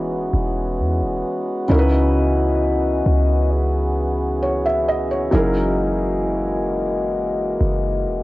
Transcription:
Already playing: 808-style bass E1, felt piano E3 B3 D#4 F#4 G#4, french horn section E3 G#3 B3 C#4 F#4
0.33 808-style bass E1
0.79 808-style bass E2
1.02 808-style bass E1
1.68 808-style bass C#2, felt piano C#3 C#4 D#4 E4 F#4, french horn section E3 C#4 D#5
1.72 felt piano A#4
1.79 felt piano B4
3.06 808-style bass C#2
3.51 french horn section G#4
4.43 felt piano C#5
4.66 felt piano E5
4.88 felt piano D#5
5.11 felt piano C#5
5.31 808-style bass F#1, french horn section E3 G#3 A#3 F#4 D#5, felt piano F#3 C#4 D#4 E4 G#4 A#4
7.61 808-style bass F#1
8.06 808-style bass E1

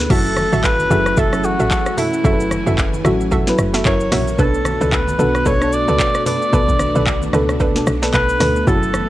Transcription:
Already playing: fm electric piano B2 B3 D4 F#4 G#4, string machine A3
0.05 alto saxophone B4
0.09 log drum bass F#1, string machine E3 C#4 F#4, fm electric piano F#3 C#4 E4 G#4, synth pluck F#4 A4 E5, alto saxophone A4, kick, crash, low conga
0.19 fm electric piano A4
0.26 shaker
0.37 cross-stick, high conga, shaker
0.52 log drum bass A1, synth pluck F#4 A4 E5, high conga, shaker
0.64 alto saxophone B4, kick, clap, shaker
0.79 high conga, shaker
0.89 log drum bass F#1, fm electric piano F#3 C#4 E4 G#4, synth pluck F#4 A4 E5, high conga, shaker
1.06 cross-stick, shaker
1.17 log drum bass F#1, synth pluck F#4 A4 E5, alto saxophone A4, kick, low conga, shaker
1.32 fm electric piano F#3 C#4 E4 A4, cross-stick, shaker
1.44 alto saxophone F#4, shaker
1.59 log drum bass A1, synth pluck F#4 A4 E5, shaker
1.71 kick, clap, shaker
1.86 cross-stick, shaker
1.97 alto saxophone E4, synth pluck F#4 A4 E5, open hi-hat, low conga, shaker
2.13 shaker
2.23 log drum bass F#1, fm electric piano F#3 C#4 E4 A4, synth pluck F#4 A4 E5, string machine G#5, kick, low conga, shaker
2.33 fm electric piano B4
2.40 shaker
2.51 cross-stick, high conga, shaker
2.66 log drum bass F#1, synth pluck F#4 A4 E5, high conga, shaker
2.78 kick, clap, shaker
2.93 high conga, shaker
3.04 log drum bass A1, fm electric piano F#3 C#4 E4 F#4, synth pluck F#4 A4 E5, cross-stick, high conga, shaker
3.21 shaker
3.31 synth pluck F#4 A4 E5, kick, low conga, shaker
3.46 fm electric piano F#3 C#4 E4 B4, snare, shaker
3.58 log drum bass F#1, cross-stick, shaker
3.74 synth pluck F#4 A4 E5, snare, shaker
3.84 log drum bass F#1, fm electric piano F#3 C#4 E4 A#4, string machine A#3 C#4 F#4, alto saxophone C#5, kick, clap, shaker
4.00 shaker
4.12 log drum bass A#1, synth pluck F#4 A#4 E5, cross-stick, snare, open hi-hat, low conga, shaker
4.27 shaker
4.38 log drum bass B1, fm electric piano B2 B3 D4 A4, string machine A3 B3 D4 F#4, synth pluck D4 A4 B4, alto saxophone A4, kick, low conga, shaker
4.54 shaker
4.65 cross-stick, high conga, shaker
4.81 log drum bass C#2, synth pluck D4 A4 B4, high conga, shaker
4.92 alto saxophone B4, kick, clap, shaker
5.07 high conga, shaker
5.18 log drum bass B1, fm electric piano B2 B3 D4 F#4, synth pluck D4 A4 B4, high conga, shaker
5.35 cross-stick, shaker
5.46 log drum bass B1, synth pluck D4 A4 B4, alto saxophone C#5, kick, low conga, shaker
5.60 fm electric piano B2 B3 D4 A4, cross-stick, shaker
5.72 alto saxophone D5, shaker
5.88 log drum bass C#2, synth pluck D4 A4 B4, shaker
6.00 kick, clap, shaker
6.15 cross-stick, shaker
6.26 synth pluck D4 A4 B4, alto saxophone D5, open hi-hat, low conga, shaker
6.42 shaker
6.52 log drum bass B1, fm electric piano B2 B3 D4 B4, string machine B3, synth pluck D4 A4 B4, kick, low conga, shaker
6.68 kick, high conga, shaker
6.79 cross-stick, high conga, shaker
6.95 log drum bass B1, synth pluck D4 A4 B4, high conga, shaker
7.07 kick, clap, shaker
7.22 high conga, shaker
7.33 log drum bass C#2, fm electric piano B2 B3 D4 A4, synth pluck D4 A4 B4, cross-stick, high conga, shaker
7.49 cross-stick, shaker
7.60 synth pluck D4 A4 B4, kick, low conga, shaker
7.75 fm electric piano B2 B3 D4 A4, snare, shaker
7.87 log drum bass B1, cross-stick, shaker
8.02 synth pluck D4 A4 B4, snare, shaker
8.14 log drum bass B1, alto saxophone B4, kick, clap, shaker
8.29 shaker
8.40 log drum bass D2, synth pluck D4 A4 B4, cross-stick, snare, open hi-hat, low conga, shaker
8.56 shaker
8.67 log drum bass F#1, string machine E3 F#4, fm electric piano F#3 C#4 E4 G#4, synth pluck E4 F#4 A4, alto saxophone A4, kick, low conga, shaker
8.76 fm electric piano A4
8.83 shaker
8.94 cross-stick, high conga, shaker

